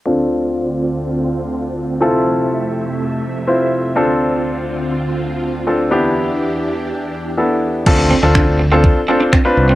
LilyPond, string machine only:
\new Staff \with { instrumentName = "String machine" } { \clef bass \time 4/4 \key d \dorian \tempo 4 = 123 <d, d c' f'>1 | <f, c a e''>1 | <d, d c' f'>1 | <e, e d' g'>1 |
r1 | }